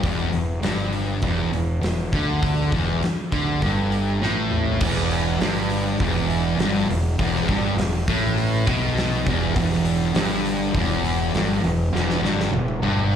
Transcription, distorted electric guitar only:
0.03 0.32 E2 loud
0.33 0.58 E2 medium
0.63 1.22 G2 loud
1.23 1.51 E2 loud
1.53 1.77 E2 medium
1.81 2.06 E2 medium
2.13 2.72 D3 loud
2.72 3.01 E2 loud
3.32 3.61 D3 loud
3.62 4.21 G2 loud
4.21 4.80 A2 loud
4.81 5.40 E2 loud
5.41 5.99 G2 loud
6.00 6.59 E2 loud
6.60 6.88 G2 loud
6.89 7.13 E2 medium
7.19 7.47 E2 loud
7.49 7.77 G2 loud
7.78 8.02 E2 medium
8.08 8.67 A2 loud
8.67 9.25 B2 loud
9.26 9.55 E2 loud
9.56 10.14 E2 loud
10.15 10.74 G2 loud
10.76 11.34 E2 loud
11.35 11.63 G2 loud
11.64 11.87 E2 medium
11.93 12.22 E2 loud
12.23 12.52 G2 medium
12.52 12.76 E2 medium
12.83 13.16 G2 loud

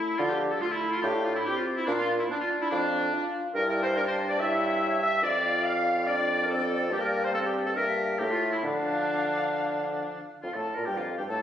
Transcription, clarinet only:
0.00 0.21 E4 loud
0.19 0.30 F4 loud
0.31 0.53 G4 medium
0.52 0.61 A4 medium
0.62 0.67 F4 loud
0.74 0.97 E4 loud
0.96 1.04 F4 loud
1.04 1.14 G4 loud
1.26 1.39 F4 medium
1.37 1.49 E4 loud
1.48 1.60 G4 loud
1.59 1.78 F4 medium
1.79 1.84 E4 medium
1.88 1.93 D4 loud
2.00 2.09 F4 loud
2.21 2.30 E4 medium
2.31 2.35 D4 loud
2.42 2.61 F4 loud
2.62 2.66 E4 loud
2.71 3.27 D4 loud
3.55 3.68 A#4 loud
3.70 3.83 A#4 loud
3.84 3.97 C5 loud
3.96 4.07 A#4 loud
4.08 4.29 C5 loud
4.30 4.41 D5 loud
4.39 5.02 E5 loud
5.03 5.24 E5 loud
5.23 5.65 D5 loud
5.65 6.08 F5 loud
6.07 6.44 D5 loud
6.43 6.51 A#4 medium
6.50 6.91 A4 loud
6.91 6.96 G4 loud
7.03 7.23 A#4 loud
7.24 7.29 C5 medium
7.34 7.47 A4 loud
7.46 7.68 G4 medium
7.66 7.75 A4 loud
7.76 8.21 A#4 loud
8.20 8.31 G4 medium
8.31 8.41 F4 medium
8.54 8.59 E4 medium
8.64 10.18 D4 medium
10.44 10.48 F4 medium
10.55 10.64 A4 soft
10.75 10.87 A#4 soft
10.85 10.98 G4 medium
10.97 11.20 F4 soft
11.18 11.30 G4 soft
11.28 11.42 A4 medium

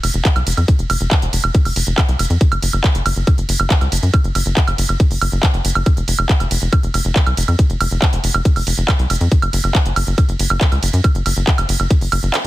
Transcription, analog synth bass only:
0.04 0.11 F1 loud
0.14 0.22 F1 medium
0.36 0.43 C2 medium
0.47 0.54 F1 loud
0.57 0.65 F2 medium
0.79 0.86 F1 medium
0.90 0.97 F1 loud
1.01 1.08 F1 loud
1.22 1.30 F1 medium
1.33 1.40 F1 loud
1.44 1.51 F1 medium
1.65 1.73 F1 medium
1.76 1.84 F1 loud
1.87 1.94 F1 loud
2.09 2.16 C2 medium
2.19 2.27 F1 loud
2.30 2.38 F2 medium
2.52 2.59 F#1 medium
2.63 2.70 F#1 loud
2.73 2.81 F#1 medium
2.95 3.02 F#1 medium
3.06 3.13 F#1 loud
3.16 3.24 F#1 medium
3.38 3.45 F#1 medium
3.49 3.56 F#1 loud
3.60 3.67 F#1 loud
3.81 3.89 C#2 medium
3.92 3.99 F#1 loud
4.03 4.10 F#2 medium
4.24 4.32 F#1 medium
4.35 4.43 F#1 loud
4.46 4.53 F#1 medium
4.68 4.75 F#1 medium
4.78 4.86 F#1 loud
4.89 4.97 F#1 medium
5.11 5.18 F#1 medium
5.21 5.29 F#1 loud
5.32 5.40 F#1 loud
5.54 5.61 F#1 medium
5.65 5.72 F#1 loud
5.75 5.83 F#1 medium
5.97 6.04 F1 medium
6.08 6.15 F1 loud
6.19 6.26 F1 medium
6.40 6.48 F1 medium
6.51 6.58 F1 loud
6.62 6.69 F1 medium
6.83 6.91 F1 medium
6.94 7.02 F1 loud
7.05 7.12 F1 loud
7.27 7.34 C2 medium
7.37 7.45 F1 loud
7.48 7.56 F2 loud
7.70 7.77 F1 medium
7.81 7.88 F1 loud
7.91 7.99 F1 medium
8.13 8.20 F1 medium
8.24 8.31 F1 loud
8.34 8.42 F1 medium
8.56 8.63 F1 medium
8.67 8.74 F1 loud
8.78 8.85 F1 loud
8.99 9.07 C2 medium
9.10 9.17 F1 loud
9.21 9.28 F2 medium
9.42 9.50 F#1 medium
9.53 9.61 F#1 loud
9.64 9.71 F#1 medium
9.86 9.93 F#1 medium
9.96 10.04 F#1 loud
10.07 10.15 F#1 medium
10.29 10.36 F#1 medium
10.39 10.47 F#1 loud
10.50 10.58 F#1 loud
10.72 10.79 C#2 medium
10.83 10.90 F#1 loud
10.93 11.01 F#2 loud
11.15 11.22 F#1 medium
11.26 11.33 F#1 loud
11.37 11.44 F#1 loud
11.58 11.66 F#1 medium
11.69 11.76 F#1 loud
11.80 11.87 F#1 medium
12.01 12.09 F#1 medium
12.12 12.20 F#1 loud
12.23 12.30 F#1 loud

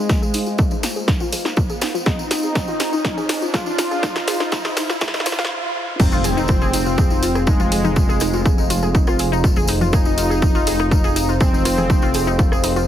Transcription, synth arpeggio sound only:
0.10 0.13 F4 medium
0.22 0.26 G#4 loud
0.34 0.41 D#4 medium
0.47 0.53 F4 medium
0.59 0.68 G#4 medium
0.72 0.80 D#4 medium
0.83 0.90 F4 medium
0.96 1.02 G#4 medium
1.08 1.12 D#4 medium
1.21 1.27 F4 loud
1.33 1.39 G#4 medium
1.45 1.49 D#4 loud
1.57 1.61 F4 medium
1.70 1.73 G#4 loud
1.82 1.88 D#4 medium
1.94 2.00 F4 medium
2.06 2.16 G#4 medium
2.19 2.28 D#4 medium
2.31 2.37 F4 medium
2.44 2.49 G#4 medium
2.55 2.59 D#4 medium
2.68 2.74 F4 loud
2.80 2.86 G#4 medium
2.93 2.96 D#4 loud
3.17 3.21 G#4 loud
3.29 3.36 D#4 medium
3.42 3.48 F4 medium
3.54 3.63 G#4 medium
3.67 3.75 D#4 medium
3.79 3.85 F4 medium
3.91 3.97 G#4 medium
4.03 4.07 D#4 medium
4.16 4.22 F4 loud
4.28 4.34 G#4 medium
4.40 4.44 D#4 loud
4.52 4.56 F4 medium
4.65 4.68 G#4 loud
4.77 4.83 D#4 medium
4.90 4.95 F4 medium
5.01 5.11 G#4 medium
5.14 5.23 D#4 medium
5.26 5.32 C5 medium
5.39 5.42 F5 loud
6.00 6.03 D#4 medium
6.12 6.18 F4 loud
6.24 6.31 G#4 medium
6.37 6.41 D#4 loud
6.49 6.53 F4 medium
6.62 6.65 G#4 loud
6.73 6.80 D#4 medium
6.86 6.92 F4 medium
6.98 7.08 G#4 medium
7.11 7.20 D#4 medium
7.23 7.29 F4 medium
7.35 7.41 G#4 medium
7.47 7.51 D#4 medium
7.60 7.66 F4 loud
7.72 7.78 G#4 medium
7.84 7.88 D#4 loud
7.96 8.00 F4 medium
8.09 8.13 G#4 loud
8.21 8.27 D#4 medium
8.34 8.40 F4 medium
8.45 8.55 G#4 medium
8.58 8.67 D#4 medium
8.70 8.76 F4 medium
8.83 8.89 G#4 medium
8.95 8.99 D#4 medium
9.07 9.13 F4 loud
9.19 9.26 G#4 medium
9.32 9.36 D#4 loud
9.44 9.48 F4 medium
9.57 9.60 G#4 loud
9.68 9.75 D#4 medium
9.81 9.87 F4 medium
9.93 10.03 G#4 medium
10.06 10.15 D#4 medium
10.18 10.24 F4 medium
10.30 10.36 G#4 medium
10.42 10.46 D#4 medium
10.55 10.61 F4 loud
10.67 10.73 G#4 medium
10.80 10.83 D#4 loud
10.91 10.95 F4 medium
11.04 11.08 G#4 loud
11.16 11.22 D#4 medium
11.29 11.35 F4 medium
11.41 11.50 G#4 medium
11.53 11.62 D#4 medium
11.65 11.72 F4 medium
11.78 11.84 G#4 medium
11.90 11.94 D#4 medium
12.03 12.09 F4 loud
12.15 12.21 G#4 medium
12.27 12.31 D#4 loud
12.39 12.43 F4 medium
12.52 12.55 G#4 loud
12.64 12.70 D#4 medium
12.76 12.82 F4 medium

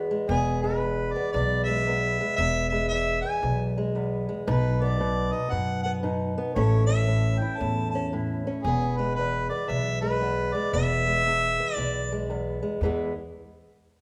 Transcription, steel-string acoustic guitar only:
0.00 0.30 E2 medium
0.00 2.39 E3 medium
0.00 0.10 G#3 medium
0.00 0.31 B3 medium
0.00 1.73 G#4 medium
0.11 0.63 G#3 medium
0.30 0.82 E2 medium
0.30 1.15 B3 medium
0.64 1.67 G#3 medium
0.83 1.34 E2 medium
1.16 1.88 B3 medium
1.34 1.86 E2 medium
1.68 2.20 G#3 medium
1.87 2.38 E2 medium
1.87 2.39 B3 medium
2.21 2.71 G#3 medium
2.39 2.91 E2 medium
2.39 3.24 B3 medium
2.72 3.76 G#3 medium
2.92 3.42 E2 medium
3.24 3.94 B3 medium
3.43 3.94 E2 medium
3.78 4.27 G#3 medium
3.95 4.47 E2 medium
3.95 4.47 B3 soft
4.29 4.48 G#3 medium
4.47 4.99 B2 medium
4.47 5.32 D#4 medium
4.82 5.84 B3 medium
5.00 5.50 B2 medium
5.33 6.02 D#4 medium
5.51 6.02 B2 medium
5.85 6.36 B3 medium
6.03 6.56 B2 medium
6.03 6.54 D#4 medium
6.38 6.54 B3 medium
6.56 7.06 A2 medium
6.56 10.73 E3 medium
6.56 6.87 C#4 medium
6.56 7.41 E4 medium
6.56 8.64 A4 medium
6.89 7.93 C#4 medium
7.07 7.60 A2 medium
7.42 8.13 E4 medium
7.61 8.12 A2 medium
7.95 8.46 C#4 medium
8.13 8.63 A2 medium
8.13 8.67 E4 medium
8.47 8.63 C#4 medium
8.67 9.18 E2 medium
8.67 9.50 B3 medium
8.99 10.02 G#3 medium
9.18 9.68 E2 medium
9.51 10.21 B3 medium
9.68 10.20 E2 medium
10.02 10.54 G#3 medium
10.20 10.73 E2 medium
10.20 10.74 B3 medium
10.55 11.06 G#3 medium
10.74 11.25 E2 medium
10.74 11.58 B3 medium
11.07 12.11 G#3 medium
11.27 11.77 E2 medium
11.60 12.29 B3 medium
11.78 12.29 E2 medium
12.12 12.61 G#3 medium
12.30 12.81 E2 medium
12.30 12.84 B3 medium
12.63 12.83 G#3 medium
12.83 13.11 E2 medium
12.83 13.12 E3 medium
12.83 13.12 G#3 medium
12.83 13.13 B3 medium
12.83 13.13 G#4 medium

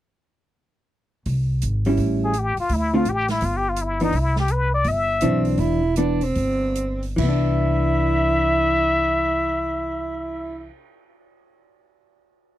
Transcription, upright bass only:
1.26 1.60 C2 medium
1.63 1.96 G#1 medium
1.98 2.53 A1 medium
2.58 muted upright bass stroke soft
2.70 3.03 D2 medium
3.05 3.39 A1 medium
3.42 4.10 G1 medium
4.13 4.82 C2 medium
4.85 5.19 G1 medium
5.22 5.57 B1 medium
5.58 6.32 E1 medium
6.36 7.15 G1 medium
7.18 10.68 C2 medium

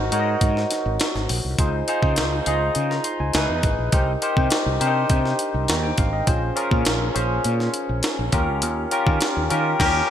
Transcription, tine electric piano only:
0.00 0.12 D#4 medium
0.00 0.12 F#4 medium
0.00 0.13 A#4 medium
0.00 1.60 C5 medium
0.12 0.85 D#4 medium
0.12 0.85 F#4 medium
0.12 0.86 A#4 medium
0.12 0.19 C#5 medium
0.20 0.89 D#5 medium
1.59 1.77 D#4 medium
1.59 1.77 F4 medium
1.59 1.77 G#4 medium
1.59 1.78 C5 medium
1.88 2.25 D#4 medium
1.88 2.25 F4 medium
1.88 2.25 G#4 medium
1.88 2.25 C5 loud
2.46 3.20 D#4 medium
2.46 3.20 F4 medium
2.46 3.20 G#4 medium
2.46 3.20 D#5 medium
2.90 3.04 A#5 medium
3.05 3.19 C6 medium
3.20 3.48 G#5 medium
3.34 3.81 D#4 medium
3.34 3.81 E4 medium
3.34 3.82 G#4 medium
3.34 3.82 B4 loud
3.93 4.11 D#4 medium
3.93 4.12 G4 medium
3.93 4.12 A#4 medium
3.93 4.12 C5 medium
4.22 4.59 D#4 medium
4.22 4.59 G4 medium
4.22 4.59 A#4 medium
4.22 4.59 C5 loud
4.80 4.87 D4 medium
4.80 5.54 G4 medium
4.80 5.54 A#4 medium
4.80 5.55 C5 medium
4.87 5.57 D#4 medium
5.69 5.83 A#5 medium
5.83 5.97 G5 medium
5.99 6.12 F5 medium
6.13 6.41 D#5 medium
6.27 6.45 C#4 medium
6.27 6.46 F4 medium
6.27 6.46 G#4 medium
6.27 6.46 C5 medium
6.56 6.93 C#4 medium
6.56 6.93 F4 medium
6.56 6.94 G#4 medium
6.56 6.94 A#4 loud
7.14 7.88 C#4 medium
7.14 7.89 F4 medium
7.14 7.89 G#4 medium
7.14 7.89 C5 medium
8.33 8.80 C#4 medium
8.33 8.80 F4 medium
8.33 8.80 G4 medium
8.33 8.80 A#4 loud
8.91 9.28 C#4 medium
8.91 9.28 F4 medium
8.91 9.28 G4 medium
8.91 9.29 A#4 loud
9.50 9.78 C#4 medium
9.50 9.80 F4 medium
9.50 9.79 G4 medium
9.50 9.79 A#4 medium
9.79 9.99 C#4 loud
9.79 10.00 G4 loud
9.79 10.00 A#4 loud

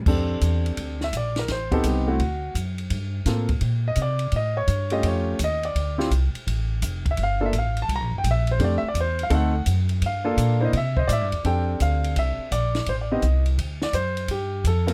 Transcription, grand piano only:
0.07 1.06 C4 medium
0.07 1.06 D4 medium
0.07 1.06 G4 medium
0.07 1.06 A4 medium
1.04 1.14 E5 medium
1.17 1.38 D5 medium
1.39 1.50 A#4 medium
1.52 1.73 C5 medium
1.71 2.05 B3 medium
1.71 2.05 C4 medium
1.71 2.05 D#4 medium
1.71 1.85 G4 medium
1.71 1.85 A4 medium
1.87 2.08 G4 medium
2.08 2.19 A3 medium
2.08 2.19 C4 medium
2.08 2.19 E4 medium
2.08 2.52 F#4 medium
3.27 3.47 A#3 medium
3.27 3.48 C4 soft
3.27 3.48 F4 soft
3.27 3.48 A4 medium
3.88 3.98 D#5 medium
4.02 4.33 D5 medium
4.36 4.57 D#5 medium
4.57 5.01 C#5 medium
4.92 5.37 A3 medium
4.92 5.37 C#4 medium
4.92 5.37 F4 medium
4.92 5.37 G4 medium
4.92 5.04 D#5 medium
5.07 5.39 C#5 medium
5.44 5.65 D#5 loud
5.65 6.08 D5 medium
5.98 6.09 C4 medium
5.98 6.09 E4 medium
5.98 6.10 F4 medium
5.98 6.10 G4 medium
7.11 7.20 E5 medium
7.23 7.43 F5 medium
7.41 7.52 A#3 medium
7.41 7.52 D4 medium
7.41 7.52 F4 medium
7.41 7.52 A4 medium
7.46 7.55 E5 medium
7.58 7.78 F5 medium
7.82 7.91 A5 medium
7.96 8.15 A#5 medium
8.18 8.27 G5 medium
8.31 8.50 E5 medium
8.51 8.61 C5 medium
8.60 8.81 A3 medium
8.60 8.81 C4 medium
8.60 8.81 D4 medium
8.60 8.81 G4 medium
8.64 8.74 D5 medium
8.78 8.86 E5 medium
8.88 8.97 D5 medium
9.00 9.21 C5 medium
9.23 9.33 F5 medium
9.30 9.51 A3 medium
9.30 9.52 C4 medium
9.30 9.52 D#4 medium
9.30 9.52 A4 medium
9.35 9.66 F#5 medium
10.06 10.59 F5 medium
10.24 10.58 A#3 medium
10.24 10.58 D4 medium
10.24 10.58 F4 medium
10.24 10.59 A4 medium
10.60 10.72 A#3 medium
10.60 10.72 D4 medium
10.60 10.72 E4 medium
10.60 10.72 C5 medium
10.65 10.75 D#5 medium
10.77 10.98 E5 medium
10.97 11.09 C5 medium
10.97 11.10 D#5 medium
11.08 11.41 D5 loud
11.13 11.25 E5 loud
11.44 12.44 C4 medium
11.44 12.44 D4 medium
11.44 12.44 G4 soft
11.44 12.44 A4 medium
11.44 11.78 G5 medium
11.82 12.18 F5 medium
12.19 12.50 E5 medium
12.52 12.88 D5 medium
12.89 12.94 C5 medium
13.01 13.10 D5 medium
13.11 13.22 B3 medium
13.11 13.22 C4 medium
13.11 13.22 D#4 medium
13.11 13.22 G4 medium
13.11 13.44 D#5 medium
13.83 13.94 D5 medium
13.94 14.27 C5 medium
14.31 14.63 G4 medium
14.67 14.93 A4 medium
14.87 14.93 A#3 medium
14.87 14.93 C4 medium
14.87 14.93 F4 medium
14.87 14.93 A#4 medium

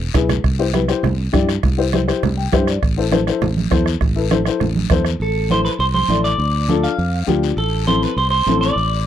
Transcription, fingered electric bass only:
0.14 0.38 B1 medium
0.44 0.92 C2 medium
1.03 1.27 C2 medium
1.33 1.57 G2 loud
1.63 2.11 C2 medium
2.23 2.47 C2 loud
2.53 2.77 G2 loud
2.82 3.30 A1 medium
3.42 3.66 A1 medium
3.71 3.95 E2 loud
4.01 4.49 A1 medium
4.61 4.85 A1 medium
4.90 5.14 E2 loud
5.20 5.68 A1 loud
5.79 6.03 C2 medium
6.08 6.33 A1 medium
6.38 6.86 D2 loud
6.98 7.22 F2 medium
7.28 7.52 D2 medium
7.57 8.05 A1 loud
8.16 8.41 C2 medium
8.46 8.71 A1 medium
8.76 9.06 A1 loud

